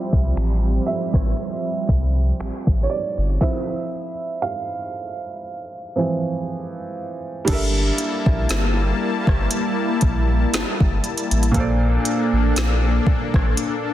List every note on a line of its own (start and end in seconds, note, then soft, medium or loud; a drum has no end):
0.00 3.37 F3 medium
0.00 3.37 G3 medium
0.00 3.43 G3 medium
0.00 3.37 C4 medium
0.00 3.42 C4 medium
0.00 3.42 E4 medium
0.00 0.85 E5 medium
0.13 0.33 C2 medium
0.13 kick medium
0.36 0.79 A1 loud
0.36 finger snap loud
0.36 closed hi-hat medium
0.86 2.90 E5 medium
1.14 1.34 A1 medium
1.14 kick loud
1.14 cross-stick medium
1.37 closed hi-hat medium
1.87 2.32 C2 medium
1.87 kick medium
1.87 closed hi-hat medium
2.40 2.51 A1 soft
2.40 finger snap loud
2.40 closed hi-hat medium
2.67 2.87 A1 medium
2.67 kick medium
2.83 2.90 C#5 medium
2.90 3.37 D5 medium
2.90 closed hi-hat soft
3.04 closed hi-hat medium
3.18 3.38 G1 medium
3.18 closed hi-hat medium
3.30 closed hi-hat medium
3.41 4.10 F3 medium
3.41 4.11 C4 medium
3.41 4.11 E4 medium
3.41 4.46 E5 loud
3.41 kick loud
3.41 snare medium
4.42 6.42 F5 medium
5.96 6.43 E3 medium
5.96 6.42 F3 soft
5.96 6.43 C4 soft
7.45 7.91 G1 loud
7.45 11.49 G3 medium
7.45 11.51 G3 medium
7.45 11.51 A#3 medium
7.45 11.50 D4 medium
7.45 11.51 E4 medium
7.45 11.51 A5 medium
7.45 kick loud
7.45 closed hi-hat medium
7.45 crash loud
7.49 11.51 A4 medium
7.49 11.52 A#4 medium
7.53 11.53 E5 medium
7.98 closed hi-hat medium
8.26 8.46 A#1 medium
8.26 kick medium
8.49 8.93 G1 medium
8.49 snare loud
8.49 closed hi-hat medium
9.27 9.47 G1 medium
9.27 kick loud
9.27 cross-stick medium
9.51 closed hi-hat medium
10.01 10.45 A#1 loud
10.01 kick medium
10.01 closed hi-hat medium
10.53 10.64 G1 medium
10.53 snare loud
10.53 closed hi-hat medium
10.80 11.00 G1 loud
10.80 kick loud
11.04 closed hi-hat soft
11.18 closed hi-hat medium
11.31 11.51 A1 medium
11.31 closed hi-hat medium
11.43 closed hi-hat medium
11.51 11.98 A#1 loud
11.51 13.94 A#2 medium
11.51 13.94 A#3 medium
11.51 13.94 D4 medium
11.51 13.94 A4 medium
11.51 kick loud
11.51 closed hi-hat medium
11.56 13.94 A4 medium
11.56 13.94 C5 medium
11.60 13.94 D5 medium
12.05 closed hi-hat medium
12.33 12.53 A1 medium
12.56 12.99 A#1 loud
12.56 snare loud
12.56 closed hi-hat medium
13.07 kick loud
13.34 13.54 A1 medium
13.34 kick loud
13.34 cross-stick medium
13.57 closed hi-hat medium